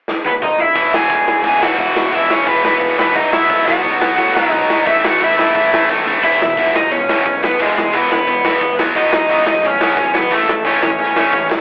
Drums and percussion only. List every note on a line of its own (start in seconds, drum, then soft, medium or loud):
0.08 snare medium
0.25 high tom medium
0.42 mid tom medium
0.59 floor tom medium
0.76 kick loud
0.76 open hi-hat medium
0.94 snare loud
1.10 kick loud
1.10 open hi-hat medium
1.28 snare loud
1.44 kick loud
1.44 open hi-hat medium
1.63 snare loud
1.78 kick loud
1.78 open hi-hat medium
1.96 snare loud
2.12 kick loud
2.12 open hi-hat medium
2.30 snare loud
2.46 kick loud
2.46 open hi-hat medium
2.65 snare loud
2.81 kick loud
2.81 open hi-hat medium
2.99 snare loud
3.15 kick loud
3.15 open hi-hat soft
3.33 snare loud
3.49 kick loud
3.49 open hi-hat medium
3.68 snare loud
3.84 kick loud
3.84 open hi-hat medium
4.01 snare loud
4.18 kick loud
4.18 open hi-hat medium
4.37 snare loud
4.52 kick loud
4.52 open hi-hat medium
4.70 snare loud
4.87 kick loud
4.87 open hi-hat medium
5.05 snare loud
5.21 kick loud
5.21 open hi-hat medium
5.39 snare loud
5.55 kick loud
5.55 open hi-hat medium
5.74 snare loud
5.89 kick loud
5.89 snare medium
6.07 floor tom medium
6.24 kick loud
6.24 crash loud
6.42 snare loud
6.57 kick loud
6.57 open hi-hat medium
6.76 snare loud
6.83 kick medium
6.92 kick medium
6.92 open hi-hat medium
7.09 snare loud
7.26 kick loud
7.26 open hi-hat medium
7.44 snare loud
7.51 kick medium
7.60 kick loud
7.60 open hi-hat medium
7.78 snare loud
7.94 kick loud
7.94 open hi-hat medium
8.12 snare loud
8.19 kick medium
8.27 kick medium
8.27 open hi-hat medium
8.45 snare loud
8.60 kick loud
8.60 open hi-hat medium
8.79 snare loud
8.87 kick medium
8.94 kick loud
8.94 open hi-hat medium
9.12 snare loud
9.29 kick loud
9.29 open hi-hat medium
9.46 snare loud
9.55 kick medium
9.63 kick medium
9.63 open hi-hat medium
9.81 snare loud
9.97 kick loud
9.97 open hi-hat medium
10.15 snare loud
10.23 kick medium
10.31 kick medium
10.31 open hi-hat medium
10.49 snare loud
10.65 kick loud
10.65 open hi-hat medium
10.83 snare loud
10.90 kick medium
10.98 kick medium
10.98 open hi-hat medium
11.16 snare loud
11.33 kick loud
11.33 open hi-hat medium
11.52 snare loud